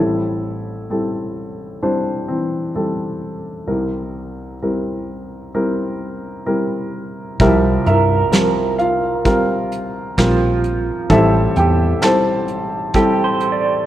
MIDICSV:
0, 0, Header, 1, 5, 480
1, 0, Start_track
1, 0, Tempo, 925926
1, 1912, Time_signature, 4, 2, 24, 8
1, 7186, End_track
2, 0, Start_track
2, 0, Title_t, "Clean electric guitar"
2, 0, Program_c, 0, 27
2, 4080, Note_on_c, 0, 70, 72
2, 4912, Note_off_c, 0, 70, 0
2, 5285, Note_on_c, 0, 53, 50
2, 5980, Note_off_c, 0, 53, 0
2, 6718, Note_on_c, 0, 67, 66
2, 6864, Note_on_c, 0, 72, 46
2, 7009, Note_on_c, 0, 74, 46
2, 7186, Note_off_c, 0, 67, 0
2, 7186, Note_off_c, 0, 72, 0
2, 7186, Note_off_c, 0, 74, 0
2, 7186, End_track
3, 0, Start_track
3, 0, Title_t, "Grand piano"
3, 0, Program_c, 1, 0
3, 0, Note_on_c, 1, 33, 44
3, 0, Note_on_c, 1, 45, 46
3, 0, Note_on_c, 1, 55, 57
3, 0, Note_on_c, 1, 60, 47
3, 0, Note_on_c, 1, 64, 75
3, 0, Note_on_c, 1, 69, 59
3, 85, Control_c, 1, 64, 127
3, 442, Note_off_c, 1, 60, 0
3, 442, Note_off_c, 1, 69, 0
3, 459, Note_off_c, 1, 55, 0
3, 464, Note_off_c, 1, 64, 0
3, 466, Note_on_c, 1, 60, 44
3, 467, Note_on_c, 1, 55, 49
3, 471, Note_on_c, 1, 64, 47
3, 471, Note_on_c, 1, 69, 53
3, 919, Note_off_c, 1, 60, 0
3, 920, Note_off_c, 1, 55, 0
3, 922, Note_off_c, 1, 64, 0
3, 922, Note_off_c, 1, 69, 0
3, 947, Note_on_c, 1, 60, 50
3, 947, Note_on_c, 1, 62, 61
3, 947, Note_on_c, 1, 64, 52
3, 948, Note_on_c, 1, 55, 51
3, 949, Note_on_c, 1, 72, 60
3, 1176, Note_off_c, 1, 60, 0
3, 1184, Note_on_c, 1, 60, 67
3, 1195, Note_on_c, 1, 52, 46
3, 1196, Note_off_c, 1, 62, 0
3, 1400, Note_off_c, 1, 55, 0
3, 1400, Note_off_c, 1, 64, 0
3, 1401, Note_off_c, 1, 72, 0
3, 1420, Note_off_c, 1, 60, 0
3, 1428, Note_on_c, 1, 60, 46
3, 1428, Note_on_c, 1, 64, 48
3, 1429, Note_on_c, 1, 55, 49
3, 1429, Note_on_c, 1, 69, 60
3, 1881, Note_off_c, 1, 60, 0
3, 1881, Note_off_c, 1, 64, 0
3, 1882, Note_off_c, 1, 55, 0
3, 1882, Note_off_c, 1, 69, 0
3, 1893, Note_off_c, 1, 33, 0
3, 1893, Note_off_c, 1, 45, 0
3, 1894, Note_off_c, 1, 52, 0
3, 1904, Note_on_c, 1, 36, 43
3, 1904, Note_on_c, 1, 48, 42
3, 1907, Note_on_c, 1, 55, 51
3, 1907, Note_on_c, 1, 64, 48
3, 1907, Note_on_c, 1, 70, 56
3, 1908, Note_on_c, 1, 60, 49
3, 1919, Control_c, 1, 64, 0
3, 1998, Control_c, 1, 64, 127
3, 2361, Note_off_c, 1, 64, 0
3, 2361, Note_off_c, 1, 70, 0
3, 2362, Note_off_c, 1, 55, 0
3, 2362, Note_off_c, 1, 60, 0
3, 2395, Note_on_c, 1, 55, 50
3, 2395, Note_on_c, 1, 70, 52
3, 2396, Note_on_c, 1, 64, 47
3, 2397, Note_on_c, 1, 60, 46
3, 2847, Note_off_c, 1, 55, 0
3, 2847, Note_off_c, 1, 64, 0
3, 2847, Note_off_c, 1, 70, 0
3, 2848, Note_off_c, 1, 60, 0
3, 2874, Note_on_c, 1, 55, 59
3, 2874, Note_on_c, 1, 64, 60
3, 2876, Note_on_c, 1, 60, 60
3, 2876, Note_on_c, 1, 70, 69
3, 3327, Note_off_c, 1, 64, 0
3, 3328, Note_off_c, 1, 55, 0
3, 3328, Note_off_c, 1, 60, 0
3, 3328, Note_off_c, 1, 70, 0
3, 3349, Note_on_c, 1, 60, 51
3, 3349, Note_on_c, 1, 64, 56
3, 3351, Note_on_c, 1, 70, 66
3, 3353, Note_on_c, 1, 55, 64
3, 3806, Note_off_c, 1, 60, 0
3, 3806, Note_off_c, 1, 64, 0
3, 3807, Note_off_c, 1, 70, 0
3, 3808, Note_off_c, 1, 55, 0
3, 3814, Note_off_c, 1, 36, 0
3, 3814, Note_off_c, 1, 48, 0
3, 3837, Note_on_c, 1, 60, 69
3, 3838, Note_on_c, 1, 48, 54
3, 3839, Note_on_c, 1, 53, 69
3, 3840, Note_on_c, 1, 36, 55
3, 3840, Note_on_c, 1, 70, 86
3, 3841, Note_on_c, 1, 76, 72
3, 3842, Note_on_c, 1, 55, 82
3, 3846, Control_c, 1, 64, 0
3, 3852, Note_on_c, 1, 64, 53
3, 3853, Note_on_c, 1, 67, 55
3, 3927, Control_c, 1, 64, 127
3, 4069, Note_off_c, 1, 64, 0
3, 4070, Note_off_c, 1, 67, 0
3, 4072, Note_off_c, 1, 76, 0
3, 4079, Note_on_c, 1, 76, 73
3, 4081, Note_off_c, 1, 70, 0
3, 4089, Note_on_c, 1, 70, 54
3, 4090, Note_on_c, 1, 64, 51
3, 4290, Note_off_c, 1, 53, 0
3, 4290, Note_off_c, 1, 60, 0
3, 4292, Note_off_c, 1, 55, 0
3, 4303, Note_off_c, 1, 70, 0
3, 4310, Note_on_c, 1, 70, 65
3, 4311, Note_on_c, 1, 53, 59
3, 4312, Note_on_c, 1, 60, 58
3, 4313, Note_on_c, 1, 55, 60
3, 4539, Note_off_c, 1, 76, 0
3, 4545, Note_off_c, 1, 64, 0
3, 4554, Note_on_c, 1, 77, 75
3, 4566, Note_on_c, 1, 65, 59
3, 4766, Note_off_c, 1, 53, 0
3, 4766, Note_off_c, 1, 70, 0
3, 4767, Note_off_c, 1, 55, 0
3, 4767, Note_off_c, 1, 60, 0
3, 4786, Note_off_c, 1, 65, 0
3, 4789, Note_off_c, 1, 77, 0
3, 4794, Note_on_c, 1, 55, 63
3, 4795, Note_on_c, 1, 70, 79
3, 4797, Note_on_c, 1, 60, 65
3, 4797, Note_on_c, 1, 65, 65
3, 4797, Note_on_c, 1, 77, 67
3, 5247, Note_off_c, 1, 55, 0
3, 5248, Note_off_c, 1, 70, 0
3, 5249, Note_off_c, 1, 60, 0
3, 5249, Note_off_c, 1, 65, 0
3, 5275, Note_on_c, 1, 65, 62
3, 5276, Note_on_c, 1, 55, 66
3, 5276, Note_on_c, 1, 60, 64
3, 5278, Note_on_c, 1, 70, 74
3, 5727, Note_off_c, 1, 55, 0
3, 5727, Note_off_c, 1, 60, 0
3, 5727, Note_off_c, 1, 65, 0
3, 5728, Note_off_c, 1, 70, 0
3, 5736, Note_off_c, 1, 77, 0
3, 5737, Note_off_c, 1, 48, 0
3, 5738, Note_off_c, 1, 36, 0
3, 5752, Note_on_c, 1, 60, 76
3, 5753, Note_on_c, 1, 69, 97
3, 5754, Note_on_c, 1, 33, 57
3, 5754, Note_on_c, 1, 45, 57
3, 5754, Note_on_c, 1, 55, 82
3, 5757, Note_on_c, 1, 64, 81
3, 5761, Note_on_c, 1, 76, 90
3, 5764, Control_c, 1, 64, 0
3, 5768, Note_on_c, 1, 72, 61
3, 5771, Note_on_c, 1, 67, 62
3, 5863, Control_c, 1, 64, 127
3, 5983, Note_off_c, 1, 76, 0
3, 5986, Note_off_c, 1, 72, 0
3, 5988, Note_off_c, 1, 67, 0
3, 5998, Note_on_c, 1, 79, 83
3, 6009, Note_on_c, 1, 67, 69
3, 6205, Note_off_c, 1, 60, 0
3, 6205, Note_off_c, 1, 69, 0
3, 6206, Note_off_c, 1, 55, 0
3, 6207, Note_off_c, 1, 64, 0
3, 6226, Note_off_c, 1, 67, 0
3, 6228, Note_on_c, 1, 55, 60
3, 6230, Note_on_c, 1, 64, 61
3, 6230, Note_on_c, 1, 69, 73
3, 6233, Note_on_c, 1, 60, 57
3, 6238, Note_off_c, 1, 69, 0
3, 6238, Note_on_c, 1, 81, 92
3, 6244, Note_off_c, 1, 79, 0
3, 6246, Note_on_c, 1, 69, 62
3, 6250, Note_on_c, 1, 72, 69
3, 6681, Note_off_c, 1, 55, 0
3, 6683, Note_off_c, 1, 64, 0
3, 6684, Note_off_c, 1, 60, 0
3, 6704, Note_off_c, 1, 69, 0
3, 6708, Note_on_c, 1, 60, 69
3, 6709, Note_on_c, 1, 55, 76
3, 6711, Note_on_c, 1, 64, 64
3, 6712, Note_on_c, 1, 69, 77
3, 7160, Note_off_c, 1, 60, 0
3, 7161, Note_off_c, 1, 55, 0
3, 7161, Note_off_c, 1, 64, 0
3, 7162, Note_off_c, 1, 69, 0
3, 7173, Note_off_c, 1, 81, 0
3, 7178, Note_off_c, 1, 72, 0
3, 7186, Note_off_c, 1, 33, 0
3, 7186, Note_off_c, 1, 45, 0
3, 7186, End_track
4, 0, Start_track
4, 0, Title_t, "Fingered electric bass"
4, 0, Program_c, 2, 33
4, 3837, Note_on_c, 2, 36, 83
4, 4024, Note_off_c, 2, 36, 0
4, 4078, Note_on_c, 2, 43, 83
4, 4265, Note_off_c, 2, 43, 0
4, 5277, Note_on_c, 2, 34, 77
4, 5650, Note_off_c, 2, 34, 0
4, 5754, Note_on_c, 2, 33, 87
4, 5941, Note_off_c, 2, 33, 0
4, 5996, Note_on_c, 2, 40, 86
4, 6182, Note_off_c, 2, 40, 0
4, 7186, End_track
5, 0, Start_track
5, 0, Title_t, "Drums"
5, 3836, Note_on_c, 9, 36, 83
5, 3836, Note_on_c, 9, 42, 56
5, 3888, Note_off_c, 9, 36, 0
5, 3888, Note_off_c, 9, 42, 0
5, 4076, Note_on_c, 9, 42, 45
5, 4128, Note_off_c, 9, 42, 0
5, 4315, Note_on_c, 9, 42, 65
5, 4320, Note_on_c, 9, 38, 77
5, 4367, Note_off_c, 9, 42, 0
5, 4371, Note_off_c, 9, 38, 0
5, 4557, Note_on_c, 9, 42, 43
5, 4609, Note_off_c, 9, 42, 0
5, 4797, Note_on_c, 9, 36, 64
5, 4797, Note_on_c, 9, 42, 61
5, 4849, Note_off_c, 9, 36, 0
5, 4849, Note_off_c, 9, 42, 0
5, 5038, Note_on_c, 9, 42, 44
5, 5089, Note_off_c, 9, 42, 0
5, 5275, Note_on_c, 9, 42, 64
5, 5277, Note_on_c, 9, 36, 58
5, 5279, Note_on_c, 9, 38, 78
5, 5327, Note_off_c, 9, 42, 0
5, 5329, Note_off_c, 9, 36, 0
5, 5331, Note_off_c, 9, 38, 0
5, 5516, Note_on_c, 9, 42, 49
5, 5568, Note_off_c, 9, 42, 0
5, 5753, Note_on_c, 9, 42, 65
5, 5754, Note_on_c, 9, 36, 78
5, 5805, Note_off_c, 9, 42, 0
5, 5806, Note_off_c, 9, 36, 0
5, 5992, Note_on_c, 9, 42, 48
5, 6044, Note_off_c, 9, 42, 0
5, 6229, Note_on_c, 9, 42, 67
5, 6234, Note_on_c, 9, 38, 90
5, 6281, Note_off_c, 9, 42, 0
5, 6285, Note_off_c, 9, 38, 0
5, 6469, Note_on_c, 9, 42, 45
5, 6520, Note_off_c, 9, 42, 0
5, 6707, Note_on_c, 9, 42, 65
5, 6710, Note_on_c, 9, 36, 64
5, 6759, Note_off_c, 9, 42, 0
5, 6762, Note_off_c, 9, 36, 0
5, 6949, Note_on_c, 9, 42, 43
5, 7000, Note_off_c, 9, 42, 0
5, 7186, End_track
0, 0, End_of_file